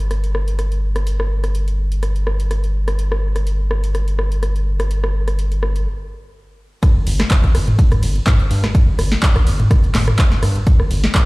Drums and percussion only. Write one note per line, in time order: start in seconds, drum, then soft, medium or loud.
0.11 cross-stick soft
0.11 closed hi-hat medium
0.24 closed hi-hat soft
0.35 cross-stick medium
0.48 closed hi-hat medium
0.59 cross-stick soft
0.59 closed hi-hat medium
0.72 closed hi-hat soft
0.96 cross-stick medium
0.96 closed hi-hat medium
1.07 closed hi-hat medium
1.20 cross-stick medium
1.44 cross-stick soft
1.44 closed hi-hat soft
1.55 closed hi-hat medium
1.68 closed hi-hat soft
1.92 closed hi-hat medium
2.03 cross-stick soft
2.03 closed hi-hat medium
2.16 closed hi-hat soft
2.27 cross-stick medium
2.40 closed hi-hat soft
2.51 cross-stick soft
2.51 closed hi-hat medium
2.64 closed hi-hat soft
2.88 cross-stick medium
2.88 closed hi-hat soft
2.99 closed hi-hat medium
3.12 cross-stick medium
3.36 cross-stick soft
3.36 closed hi-hat soft
3.47 closed hi-hat medium
3.71 cross-stick medium
3.84 closed hi-hat soft
3.95 cross-stick soft
3.95 closed hi-hat medium
4.08 closed hi-hat soft
4.19 cross-stick medium
4.32 closed hi-hat soft
4.43 cross-stick soft
4.43 closed hi-hat medium
4.56 closed hi-hat soft
4.80 cross-stick medium
4.80 closed hi-hat soft
4.91 closed hi-hat medium
5.04 cross-stick medium
5.28 cross-stick soft
5.28 closed hi-hat soft
5.39 closed hi-hat medium
5.52 closed hi-hat soft
5.63 cross-stick medium
5.76 closed hi-hat soft
6.83 kick loud
6.83 cross-stick medium
6.83 closed hi-hat medium
6.83 ride medium
7.07 open hi-hat loud
7.07 ride medium
7.20 cross-stick medium
7.20 snare medium
7.31 kick loud
7.31 clap loud
7.31 closed hi-hat medium
7.31 ride medium
7.44 kick medium
7.44 closed hi-hat soft
7.55 cross-stick medium
7.55 open hi-hat loud
7.55 ride medium
7.68 closed hi-hat soft
7.68 mid tom medium
7.79 kick loud
7.79 closed hi-hat medium
7.79 ride medium
7.92 cross-stick medium
7.92 closed hi-hat medium
7.92 mid tom medium
8.03 open hi-hat loud
8.03 ride medium
8.16 closed hi-hat soft
8.27 kick loud
8.27 cross-stick medium
8.27 snare soft
8.27 clap loud
8.27 closed hi-hat medium
8.27 mid tom medium
8.40 closed hi-hat soft
8.51 open hi-hat loud
8.51 ride medium
8.64 cross-stick medium
8.64 snare medium
8.75 kick loud
8.75 closed hi-hat medium
8.75 ride medium
8.99 cross-stick medium
8.99 open hi-hat loud
8.99 ride medium
9.12 snare medium
9.23 kick loud
9.23 clap loud
9.23 closed hi-hat medium
9.23 ride medium
9.36 kick medium
9.36 cross-stick medium
9.36 closed hi-hat soft
9.47 open hi-hat loud
9.47 ride medium
9.60 closed hi-hat soft
9.60 mid tom loud
9.71 kick loud
9.71 cross-stick medium
9.71 closed hi-hat medium
9.71 ride medium
9.84 closed hi-hat medium
9.95 snare medium
9.95 clap medium
9.95 mid tom medium
9.95 open hi-hat loud
9.95 ride medium
10.08 cross-stick medium
10.08 closed hi-hat soft
10.08 mid tom loud
10.19 kick loud
10.19 clap loud
10.19 closed hi-hat medium
10.19 ride medium
10.32 snare soft
10.32 closed hi-hat soft
10.43 cross-stick medium
10.43 open hi-hat loud
10.43 ride medium
10.56 closed hi-hat medium
10.67 kick loud
10.67 closed hi-hat medium
10.67 ride medium
10.80 cross-stick medium
10.91 open hi-hat loud
10.91 ride medium
11.04 snare medium
11.15 kick loud
11.15 cross-stick medium
11.15 clap loud
11.15 closed hi-hat medium
11.15 ride medium